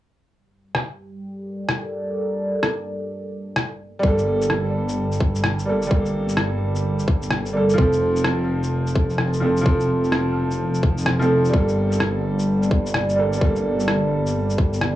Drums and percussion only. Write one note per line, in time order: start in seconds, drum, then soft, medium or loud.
0.75 cross-stick medium
1.69 cross-stick medium
2.63 cross-stick medium
3.56 cross-stick loud
4.03 kick loud
4.18 shaker soft
4.42 shaker medium
4.50 cross-stick loud
4.89 shaker medium
5.12 shaker soft
5.20 kick loud
5.35 shaker medium
5.44 cross-stick medium
5.59 shaker soft
5.82 shaker medium
5.91 kick loud
6.05 shaker soft
6.29 shaker medium
6.37 cross-stick loud
6.76 shaker medium
6.99 shaker soft
7.08 kick loud
7.23 shaker medium
7.31 cross-stick medium
7.46 shaker soft
7.70 shaker medium
7.78 kick loud
7.93 shaker soft
8.16 shaker medium
8.24 cross-stick loud
8.63 shaker medium
8.87 shaker soft
8.96 kick loud
9.10 shaker medium
9.18 cross-stick loud
9.33 shaker soft
9.57 shaker medium
9.66 kick loud
9.81 shaker soft
10.04 shaker medium
10.12 cross-stick medium
10.51 shaker soft
10.74 shaker soft
10.83 kick loud
10.98 shaker soft
11.06 cross-stick loud
11.21 shaker soft
11.45 shaker soft
11.54 kick loud
11.68 shaker soft
11.92 shaker medium
12.00 cross-stick medium
12.39 shaker soft
12.62 shaker soft
12.71 kick loud
12.86 shaker soft
12.94 cross-stick loud
13.09 shaker soft
13.33 shaker soft
13.41 kick loud
13.56 shaker soft
13.80 shaker medium
13.88 cross-stick medium
14.26 shaker soft
14.50 shaker soft
14.58 kick loud
14.73 shaker soft
14.81 cross-stick medium